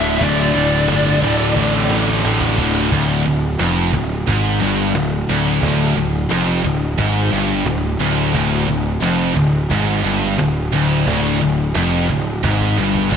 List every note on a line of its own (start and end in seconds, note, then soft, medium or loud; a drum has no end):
0.00 0.19 D1 medium
0.00 0.19 D2 medium
0.00 0.20 D2 medium
0.00 0.19 A2 medium
0.00 0.20 A2 loud
0.00 0.21 D3 loud
0.00 0.22 D3 medium
0.00 0.23 E5 medium
0.21 0.52 D1 loud
0.21 0.53 D2 medium
0.21 0.53 A2 medium
0.21 0.53 D3 loud
0.21 2.54 D5 medium
0.21 cajon bass loud
0.54 0.87 D1 medium
0.54 0.88 D2 medium
0.54 0.89 A2 medium
0.54 0.88 D3 loud
0.88 1.20 G1 medium
0.88 1.22 D2 medium
0.88 1.22 A2 loud
0.88 1.22 D3 loud
0.88 cajon slap loud
1.22 1.54 D1 medium
1.22 1.55 D2 medium
1.22 1.56 A2 medium
1.22 1.56 D3 medium
1.22 cajon bass medium
1.56 2.20 A1 medium
1.56 1.88 D2 loud
1.56 1.89 A2 loud
1.56 1.89 D3 loud
1.56 cajon bass medium
1.74 cajon slap medium
1.90 2.22 D2 medium
1.90 2.23 A2 medium
1.90 2.23 D3 medium
1.90 cajon slap medium
2.08 cajon slap medium
2.23 2.56 A1 medium
2.23 2.57 D2 medium
2.23 2.57 A2 loud
2.23 2.57 D3 loud
2.23 cajon slap medium
2.41 cajon bass medium
2.58 2.90 D1 medium
2.58 2.90 D2 medium
2.58 2.90 A2 medium
2.58 2.90 D3 medium
2.58 cajon bass loud
2.75 cajon slap medium
2.92 3.24 D1 medium
2.92 3.25 D2 loud
2.92 cajon bass loud
3.27 3.58 D1 medium
3.27 3.54 D2 medium
3.59 3.92 F1 medium
3.59 3.93 F2 loud
3.59 cajon slap loud
3.93 4.25 D1 medium
3.93 4.20 D2 medium
3.93 cajon bass medium
4.28 4.59 G#1 medium
4.28 4.61 G#2 loud
4.28 cajon bass loud
4.61 4.93 G1 medium
4.61 4.94 G2 loud
4.95 5.27 D1 medium
4.95 5.23 D2 medium
4.95 cajon slap loud
5.29 5.61 D1 loud
5.29 5.60 D2 loud
5.62 5.95 D1 medium
5.62 5.94 D2 loud
5.62 cajon bass loud
5.96 6.29 D1 medium
5.96 6.23 D2 medium
6.29 6.62 F1 medium
6.29 6.63 F2 loud
6.29 cajon slap loud
6.64 6.96 D1 medium
6.64 6.91 D2 medium
6.64 cajon bass medium
6.98 7.30 G#1 medium
6.98 7.31 G#2 loud
6.98 cajon bass loud
7.31 7.64 G1 medium
7.31 7.65 G2 loud
7.66 7.98 D1 medium
7.66 7.93 D2 medium
7.66 cajon slap loud
8.00 8.32 D1 loud
8.00 8.33 D2 loud
8.34 8.66 D1 medium
8.34 8.67 D2 loud
8.34 cajon bass loud
8.68 9.00 D1 medium
8.68 8.96 D2 medium
9.02 9.34 F1 medium
9.02 9.35 F2 loud
9.02 cajon slap loud
9.37 9.69 D1 medium
9.37 9.64 D2 medium
9.37 cajon bass medium
9.70 10.03 G#1 medium
9.70 10.04 G#2 loud
9.70 cajon bass loud
10.04 10.36 G1 medium
10.04 10.38 G2 loud
10.39 10.71 D1 medium
10.39 10.66 D2 medium
10.39 cajon slap loud
10.73 11.05 D1 loud
10.73 11.06 D2 loud
11.07 11.39 D1 medium
11.07 11.40 D2 loud
11.07 cajon bass loud
11.41 11.74 D1 medium
11.41 11.68 D2 medium
11.75 12.08 F1 medium
11.75 12.09 F2 loud
11.75 cajon slap loud
12.10 12.41 D1 medium
12.10 12.37 D2 medium
12.10 cajon bass medium
12.44 12.76 G#1 medium
12.44 12.77 G#2 loud
12.44 cajon bass loud
12.61 cajon bass medium
12.78 13.10 G1 medium
12.78 13.11 G2 loud
12.95 cajon bass medium
13.12 13.17 G1 medium
13.12 13.17 G2 loud
13.12 cajon bass medium